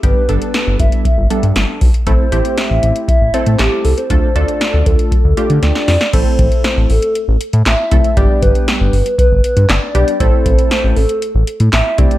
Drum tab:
CC |----------------|----------------|----------------|x---------------|
HH |x-xxx-xxx-xxx-ox|x-xxx-xxx-xxx-ox|x-xxx-xxx-xxx-ox|x-xxx-oxx-xxx-xx|
CP |----------------|------------x---|----------------|------------x---|
SD |----o-------o---|----o-------o---|----o-------oooo|----o-------o---|
BD |o-----o-o-----o-|o-------o-------|o-----o-o-------|o-o-----------o-|

CC |----------------|----------------|
HH |x-xxx-oxx-xxx-xx|x-xxx-oxx-xxx-xx|
CP |------------x---|------------x---|
SD |----o-------o---|----o-------o---|
BD |o-o-----o-------|o-o-----------o-|